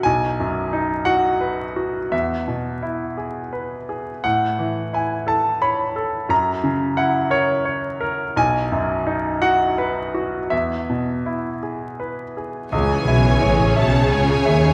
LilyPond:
<<
  \new Staff \with { instrumentName = "Violin section" } { \time 6/8 \key e \major \tempo 4. = 57 r2. | r2. | r2. | r2. |
r2. | r2. | gis''4. a''8 gis''4 | }
  \new Staff \with { instrumentName = "Violin section" } { \time 6/8 \key e \major r2. | r2. | r2. | r2. |
r2. | r2. | <gis' cis''>2. | }
  \new Staff \with { instrumentName = "Grand piano" } { \time 6/8 \key e \major << { gis''4. fis''4. | e''4. r4. | fis''4 gis''8 a''8 b''4 | ais''4 fis''8 cis''4. |
gis''4. fis''4. | e''4. r4. | r2. | } \\ { b,,8 fis,8 dis'8 fis'8 b'8 fis'8 | e,8 b,8 e'8 gis'8 b'8 gis'8 | a,8 e8 e'8 a'8 cis''8 a'8 | fis,8 cis8 e'8 ais'8 cis''8 ais'8 |
b,,8 fis,8 dis'8 fis'8 b'8 fis'8 | e,8 b,8 e'8 gis'8 b'8 gis'8 | cis,8 e'8 cis''8 e''8 gis''8 e''8 | } >> }
  \new Staff \with { instrumentName = "Viola section" } { \clef bass \time 6/8 \key e \major << { r2. | r2. | r2. | r2. |
r2. | r2. | cis'2. | } \\ { r2. | r2. | r2. | r2. |
r2. | r2. | e4. cis4. | } >> }
  \new Staff \with { instrumentName = "Cello section" } { \clef bass \time 6/8 \key e \major r2. | r2. | r2. | r2. |
r2. | r2. | cis8 b,8 a,8 b,8 cis8 dis8 | }
  \new Staff \with { instrumentName = "Double bass section" } { \clef bass \time 6/8 \key e \major r2. | r2. | r2. | r2. |
r2. | r2. | cis,8 b,,8 a,,8 b,,8 cis,8 dis,8 | }
>>